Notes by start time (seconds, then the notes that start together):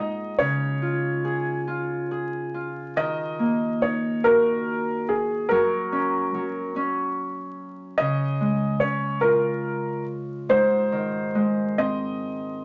Already playing: G#2 G#3 A#3 D#4 F4 G#4 D#5
0.39 C#3 C#5
0.82 F4
1.25 G#4
1.67 F4
2.11 G#4
2.54 F4
2.96 D#3 D#5
3.39 A#3
3.82 D#4 C#5
4.24 F#4 A#4
5.09 G#4
5.49 F#3 A#4
5.92 C#4
6.34 F#3
6.76 C#4
7.98 C#3 D#5
8.40 G#3
8.80 C#4 C#5
9.21 F4 A#4
10.49 G#2 C5
10.92 D#3
11.35 G#3
11.78 C4 D#5